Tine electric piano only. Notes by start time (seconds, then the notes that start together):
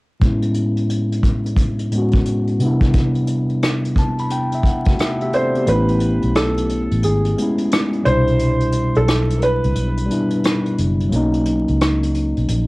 0.20 A2 G#3 B3
0.25 C#4 E4
1.91 A2 G#3 B3
1.96 C#4 F#4
2.59 C3 G3 B3
2.64 D4 E4
3.99 A5
4.20 B5
4.32 G5
4.55 E5
4.66 F#5
4.88 A3 F#4
5.00 E5
5.22 B3 G4 E5
5.34 C4 D5
5.57 B3 G4
5.65 A3 B3
5.70 C#4 E4
7.36 G#3 B3
7.40 C#4 E4
8.03 B2 G3
8.08 D4 E4
10.06 G3 B3
10.10 D4 E4
11.09 F#3 A#3
11.13 C#4 D#4